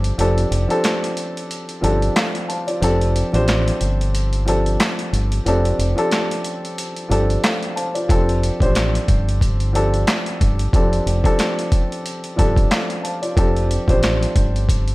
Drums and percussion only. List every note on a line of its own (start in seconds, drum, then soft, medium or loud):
0.04 closed hi-hat medium
0.19 closed hi-hat medium
0.38 closed hi-hat soft
0.52 closed hi-hat medium
0.70 closed hi-hat soft
0.84 snare loud
0.84 clap medium
0.84 closed hi-hat loud
1.04 closed hi-hat medium
1.17 closed hi-hat medium
1.37 closed hi-hat soft
1.51 closed hi-hat medium
1.69 closed hi-hat soft
1.84 closed hi-hat medium
2.02 closed hi-hat soft
2.16 snare loud
2.16 clap loud
2.16 closed hi-hat medium
2.35 closed hi-hat soft
2.50 closed hi-hat medium
2.68 closed hi-hat medium
2.83 closed hi-hat medium
3.01 closed hi-hat soft
3.16 closed hi-hat medium
3.34 closed hi-hat soft
3.48 snare loud
3.48 clap medium
3.48 closed hi-hat medium
3.68 closed hi-hat medium
3.81 closed hi-hat medium
4.01 closed hi-hat soft
4.15 closed hi-hat loud
4.33 closed hi-hat soft
4.48 closed hi-hat medium
4.66 closed hi-hat soft
4.80 snare loud
4.80 clap loud
4.80 closed hi-hat loud
4.99 closed hi-hat soft
5.14 closed hi-hat medium
5.32 closed hi-hat medium
5.46 closed hi-hat medium
5.65 closed hi-hat soft
5.80 closed hi-hat medium
5.98 closed hi-hat soft
6.12 snare loud
6.12 clap medium
6.12 closed hi-hat medium
6.31 closed hi-hat medium
6.45 closed hi-hat medium
6.65 closed hi-hat soft
6.78 closed hi-hat medium
6.96 closed hi-hat soft
7.11 closed hi-hat medium
7.30 closed hi-hat soft
7.44 snare loud
7.44 clap loud
7.44 closed hi-hat medium
7.63 closed hi-hat soft
7.77 closed hi-hat medium
7.95 closed hi-hat medium
8.09 kick loud
8.09 closed hi-hat medium
8.29 closed hi-hat soft
8.43 closed hi-hat medium
8.60 kick medium
8.60 closed hi-hat soft
8.75 snare loud
8.75 clap medium
8.75 closed hi-hat medium
8.95 closed hi-hat medium
9.08 kick loud
9.08 closed hi-hat medium
9.29 closed hi-hat soft
9.41 kick medium
9.41 closed hi-hat loud
9.60 closed hi-hat soft
9.75 closed hi-hat medium
9.94 closed hi-hat soft
10.07 snare loud
10.07 clap loud
10.07 closed hi-hat medium
10.26 closed hi-hat soft
10.41 kick medium
10.41 closed hi-hat medium
10.59 closed hi-hat medium
10.73 kick loud
10.73 closed hi-hat medium
10.93 closed hi-hat soft
11.07 closed hi-hat medium
11.24 kick medium
11.24 closed hi-hat soft
11.39 snare loud
11.39 clap medium
11.39 closed hi-hat medium
11.59 closed hi-hat medium
11.72 kick loud
11.72 closed hi-hat medium
11.92 closed hi-hat soft
12.06 closed hi-hat loud
12.24 closed hi-hat soft
12.39 kick medium
12.39 closed hi-hat medium
12.56 kick medium
12.56 closed hi-hat soft
12.71 snare loud
12.71 clap loud
12.71 closed hi-hat medium
12.90 closed hi-hat soft
13.05 closed hi-hat medium
13.23 closed hi-hat medium
13.37 kick loud
13.37 closed hi-hat medium
13.57 closed hi-hat soft
13.71 closed hi-hat medium
13.88 kick medium
13.88 closed hi-hat soft
14.03 snare loud
14.03 clap medium
14.03 closed hi-hat medium
14.23 closed hi-hat medium
14.36 kick loud
14.36 closed hi-hat medium
14.56 closed hi-hat soft
14.69 kick medium
14.69 closed hi-hat medium
14.88 closed hi-hat soft